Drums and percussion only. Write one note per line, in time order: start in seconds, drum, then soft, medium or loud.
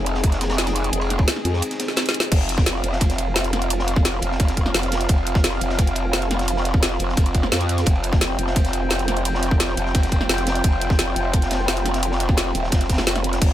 0.06 closed hi-hat medium
0.06 ride medium
0.15 snare medium
0.23 kick loud
0.23 closed hi-hat loud
0.23 ride medium
0.32 snare soft
0.32 closed hi-hat soft
0.41 snare loud
0.41 closed hi-hat medium
0.41 ride medium
0.50 snare loud
0.50 ride medium
0.58 snare loud
0.58 closed hi-hat medium
0.67 snare loud
0.67 snare soft
0.67 closed hi-hat soft
0.67 ride medium
0.76 closed hi-hat medium
0.76 ride medium
0.84 closed hi-hat soft
0.84 ride soft
0.92 closed hi-hat loud
0.92 ride medium
1.01 ride medium
1.10 snare soft
1.10 closed hi-hat medium
1.10 ride soft
1.18 kick loud
1.18 ride medium
1.28 snare loud
1.28 closed hi-hat loud
1.28 ride medium
1.36 snare soft
1.36 ride soft
1.45 closed hi-hat medium
1.45 ride medium
1.54 snare soft
1.62 closed hi-hat loud
1.62 ride medium
1.71 snare soft
1.71 closed hi-hat soft
1.80 snare loud
1.80 closed hi-hat medium
1.80 ride medium
1.88 snare soft
1.96 snare medium
1.96 snare loud
1.96 closed hi-hat medium
1.96 ride medium
2.06 snare medium
2.06 closed hi-hat soft
2.14 closed hi-hat medium
2.14 ride medium
2.20 snare loud
2.20 closed hi-hat soft
2.31 kick loud
2.31 closed hi-hat loud
2.31 crash loud
2.31 ride medium
2.40 ride soft
2.49 closed hi-hat medium
2.49 ride medium
2.58 kick loud
2.58 snare medium
2.58 snare soft
2.66 snare loud
2.66 closed hi-hat loud
2.66 ride medium
2.84 closed hi-hat medium
2.84 ride medium
2.93 snare medium
3.00 kick loud
3.00 snare soft
3.00 closed hi-hat loud
3.00 ride medium
3.10 snare soft
3.10 closed hi-hat soft
3.18 closed hi-hat medium
3.18 ride medium
3.36 snare loud
3.36 closed hi-hat medium
3.36 ride medium
3.44 closed hi-hat soft
3.53 snare medium
3.53 closed hi-hat medium
3.53 ride medium
3.62 closed hi-hat soft
3.70 closed hi-hat loud
3.70 ride medium
3.79 snare medium
3.87 closed hi-hat medium
3.87 ride medium
3.96 kick loud
3.96 snare soft
4.05 snare loud
4.05 closed hi-hat loud
4.05 ride medium
4.14 ride soft
4.22 closed hi-hat medium
4.22 ride medium
4.32 snare soft
4.40 kick loud
4.40 snare soft
4.40 closed hi-hat loud
4.40 ride loud
4.48 snare soft
4.48 closed hi-hat soft
4.57 kick medium
4.57 closed hi-hat medium
4.57 ride medium
4.66 snare medium
4.74 snare loud
4.74 closed hi-hat medium
4.74 ride medium
4.83 closed hi-hat soft
4.92 snare loud
4.92 closed hi-hat medium
4.92 ride medium
5.00 closed hi-hat soft
5.00 ride soft
5.09 kick loud
5.09 closed hi-hat medium
5.09 ride medium
5.18 ride soft
5.27 closed hi-hat medium
5.27 ride medium
5.35 kick loud
5.35 snare medium
5.35 snare soft
5.44 snare loud
5.44 closed hi-hat loud
5.44 ride medium
5.61 closed hi-hat medium
5.61 ride medium
5.70 snare medium
5.79 kick loud
5.79 snare soft
5.79 closed hi-hat loud
5.79 ride medium
5.87 closed hi-hat soft
5.95 closed hi-hat medium
5.95 ride medium
6.13 snare loud
6.13 closed hi-hat medium
6.13 ride medium
6.22 closed hi-hat soft
6.31 snare medium
6.31 closed hi-hat medium
6.31 ride medium
6.39 snare medium
6.39 closed hi-hat soft
6.48 closed hi-hat medium
6.48 ride medium
6.57 snare medium
6.65 closed hi-hat medium
6.65 ride medium
6.74 kick loud
6.74 snare soft
6.83 snare loud
6.83 closed hi-hat medium
6.83 ride medium
6.91 ride soft
6.99 closed hi-hat medium
6.99 ride medium
7.09 snare soft
7.17 kick loud
7.17 snare soft
7.17 closed hi-hat medium
7.17 ride medium
7.26 closed hi-hat soft
7.35 kick medium
7.35 closed hi-hat medium
7.35 ride medium
7.43 snare medium
7.52 snare loud
7.52 closed hi-hat medium
7.52 ride medium
7.61 closed hi-hat soft
7.69 closed hi-hat medium
7.69 ride medium
7.78 snare soft
7.78 closed hi-hat soft
7.86 kick loud
7.86 closed hi-hat medium
7.86 ride medium
7.96 ride soft
8.03 closed hi-hat medium
8.03 ride medium
8.13 kick loud
8.13 snare medium
8.13 snare soft
8.21 snare loud
8.21 closed hi-hat medium
8.21 ride medium
8.38 closed hi-hat medium
8.38 ride medium
8.47 snare medium
8.56 kick loud
8.56 snare soft
8.56 closed hi-hat medium
8.56 ride medium
8.65 snare soft
8.65 closed hi-hat soft
8.73 closed hi-hat medium
8.73 ride medium
8.90 snare loud
8.90 closed hi-hat medium
8.90 ride medium
8.99 closed hi-hat soft
9.08 snare medium
9.08 closed hi-hat medium
9.08 ride medium
9.17 closed hi-hat soft
9.25 closed hi-hat loud
9.25 ride medium
9.34 snare medium
9.43 closed hi-hat medium
9.43 ride medium
9.51 kick loud
9.51 snare soft
9.60 snare loud
9.60 closed hi-hat loud
9.60 ride medium
9.69 ride soft
9.77 closed hi-hat medium
9.77 ride medium
9.86 snare soft
9.95 kick loud
9.95 snare soft
9.95 closed hi-hat loud
9.95 ride medium
10.03 snare soft
10.03 closed hi-hat soft
10.12 kick medium
10.12 closed hi-hat medium
10.12 ride medium
10.21 snare medium
10.29 snare loud
10.29 closed hi-hat medium
10.29 ride loud
10.38 closed hi-hat soft
10.47 snare loud
10.47 closed hi-hat medium
10.47 ride medium
10.55 closed hi-hat soft
10.55 ride soft
10.64 kick loud
10.64 closed hi-hat loud
10.64 ride medium
10.72 ride soft
10.82 closed hi-hat medium
10.82 ride medium
10.90 kick loud
10.90 snare medium
10.90 snare soft
10.99 snare loud
10.99 closed hi-hat medium
10.99 ride medium
11.16 closed hi-hat medium
11.16 ride medium
11.24 ride soft
11.33 kick loud
11.33 snare soft
11.33 closed hi-hat loud
11.33 ride medium
11.42 snare soft
11.42 closed hi-hat soft
11.51 snare loud
11.51 closed hi-hat medium
11.51 ride medium
11.68 snare loud
11.68 closed hi-hat medium
11.68 ride medium
11.77 closed hi-hat soft
11.86 snare medium
11.86 closed hi-hat medium
11.86 ride medium
11.94 snare medium
11.94 closed hi-hat soft
12.03 closed hi-hat loud
12.03 ride medium
12.12 snare medium
12.20 closed hi-hat medium
12.20 ride medium
12.29 kick loud
12.29 snare soft
12.37 snare loud
12.37 closed hi-hat loud
12.37 ride medium
12.47 ride soft
12.55 closed hi-hat medium
12.55 ride medium
12.63 snare soft
12.72 kick loud
12.72 snare loud
12.72 snare soft
12.72 closed hi-hat loud
12.72 ride medium
12.81 snare soft
12.81 closed hi-hat soft
12.89 kick medium
12.89 snare medium
12.89 closed hi-hat medium
12.89 ride medium
12.94 snare medium
12.94 ride medium
12.98 snare loud
12.98 snare soft
12.98 snare medium
12.98 ride medium
13.07 snare loud
13.07 closed hi-hat medium
13.07 ride medium
13.16 snare medium
13.16 closed hi-hat soft
13.24 closed hi-hat medium
13.24 ride medium
13.33 snare soft
13.33 closed hi-hat soft
13.41 kick loud
13.41 closed hi-hat loud
13.41 crash medium
13.41 ride loud